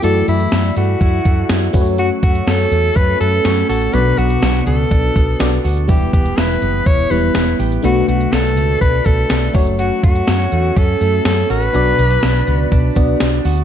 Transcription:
<<
  \new Staff \with { instrumentName = "Alto saxophone" } { \time 4/4 \key b \minor \tempo 4 = 123 a'8 e'4 fis'2 r8 | fis'8 fis'8 a'4 b'8 a'4 a'8 | b'8 fis'4 a'2 r8 | g'8 g'8 b'4 cis''8 b'4 r8 |
fis'8 fis'8 a'4 b'8 a'4 r8 | fis'8 fis'4. a'4 a'8 b'8~ | b'2. r4 | }
  \new Staff \with { instrumentName = "FM electric piano" } { \time 4/4 \key b \minor <a e' fis' d''>2.~ <a e' fis' d''>8 <a cis' fis' b' cis''>8~ | <a cis' fis' b' cis''>2. <a cis' fis' cis''>4 | <b d' fis' d''>2. <b d' fis' d''>4 | <g b e' b'>2~ <g b e' b'>8 <g b e' b'>4. |
<a d' fis' b'>2.~ <a d' fis' b'>8 <a cis' fis' cis''>8~ | <a cis' fis' cis''>2.~ <a cis' fis' cis''>8 r8 | <b d' fis' d''>2~ <b d' fis' d''>8 <b d' fis' d''>4. | }
  \new Staff \with { instrumentName = "FM electric piano" } { \clef bass \time 4/4 \key b \minor r1 | r1 | b,4. r2 r8 | e4. r2 r8 |
b,4. r2 r8 | r1 | b,4. r2 r8 | }
  \new Staff \with { instrumentName = "Clean electric guitar" } { \time 4/4 \key b \minor e8 a8 e'8 a8 e'8 a8 e'8 fis8 | fis8 a8 cis'8 a8 cis'8 a8 cis'8 fis'8 | fis8 b8 d'8 b8 d'8 b8 d'8 fis'8 | e8 b8 e'8 b8 e'8 b8 e'8 g'8 |
a8 a8 d'8 a8 d'8 a8 d'8 fis8 | fis8 a8 cis'8 a8 cis'8 a8 cis'8 fis'8 | fis8 b8 d'8 b8 d'8 b8 d'8 fis'8 | }
  \new Staff \with { instrumentName = "Fretless electric bass" } { \clef bass \time 4/4 \key b \minor fis,8 fis,8 fis,8 g,8 fis,8 fis,8 fis,8 fis,8~ | fis,8 fis,8 fis,8 e,8 fis,8 fis,8 fis,8 a,,8 | b,,8 b,,8 b,,8 cis,8 b,,8 b,,8 b,,8 d,8 | e,,8 e,,8 e,,8 fis,,8 e,,8 e,,8 e,,8 a,,8 |
b,,8 b,,8 b,,8 cis,8 b,,8 b,,8 b,,8 fis,,8~ | fis,,8 fis,8 fis,8 e,8 fis,8 fis,8 fis,8 a,,8 | b,,8 b,,8 b,,8 cis,8 b,,8 b,,8 b,,8 d,8 | }
  \new DrumStaff \with { instrumentName = "Drums" } \drummode { \time 4/4 hh8 hh16 hh16 <hh sn>8 hh8 <hh bd>8 <hh bd>8 <hh sn>8 <hho bd>16 hh16 | hh8 <hh bd>16 hh16 <hh sn>8 hh8 <hh bd>8 hh8 <hh sn>8 hho16 hh16 | hh8 hh16 hh16 <hh sn>8 hh8 <hh bd>8 <hh bd>8 <hh sn>8 hho16 hh16 | <hh bd>8 <hh bd>16 hh16 <hh sn>8 hh8 <hh bd>8 hh8 <hh sn>8 hho16 hh16 |
hh8 hh16 hh16 <hh sn>8 hh8 <hh bd>8 <hh bd>8 <hh sn>8 <hho bd>16 hh16 | hh8 <hh bd>16 hh16 <hh sn>8 hh8 <hh bd>8 hh8 <hh sn>8 hho16 hh16 | hh8 hh16 hh16 <hh sn>8 hh8 <hh bd>8 <hh bd>8 <hh sn>8 hho16 hh16 | }
>>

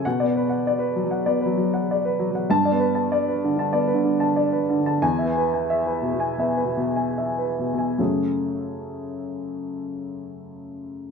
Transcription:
<<
  \new Staff \with { instrumentName = "Upright piano" } { \time 4/4 \key fis \minor \tempo 4 = 89 << { fis''8 r2. r8 | a''8 r2. r8 | gis''8 r2. r8 | <fis, cis a cis' fis' gis'>1 | } \\ { r16 d''16 b'16 fis''16 d''16 b'16 fis16 fis''16 d''16 b'16 fis16 fis''16 d''16 b'16 fis16 fis''16 | r16 d''16 b'16 a''16 d''16 b'16 d16 a''16 d''16 b'16 d16 a''16 d''16 b'16 d16 a''16 | r16 e''16 b'16 gis''16 e''16 b'16 b,16 gis''16 e''16 b'16 b,16 gis''16 e''16 b'16 b,16 gis''16 | r1 | } >> }
  \new Staff \with { instrumentName = "Upright piano" } { \clef bass \time 4/4 \key fis \minor \tuplet 3/2 { b,8 b4 r4 fis8 b8 fis4 r4 fis8 } | \tuplet 3/2 { g,8 b4 r4 d8 b8 d4 r4 d8 } | \tuplet 3/2 { e,8 b4 r4 b,8 b8 b,4 r4 b,8 } | r1 | }
>>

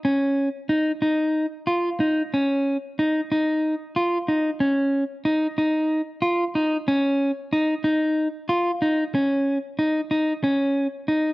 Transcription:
\new Staff \with { instrumentName = "Clean electric guitar" } { \time 7/8 \key cis \mixolydian \tempo 4 = 92 cis'4 dis'8 dis'4 eis'8 dis'8 | cis'4 dis'8 dis'4 eis'8 dis'8 | cis'4 dis'8 dis'4 eis'8 dis'8 | cis'4 dis'8 dis'4 eis'8 dis'8 |
cis'4 dis'8 dis'8 cis'4 dis'8 | }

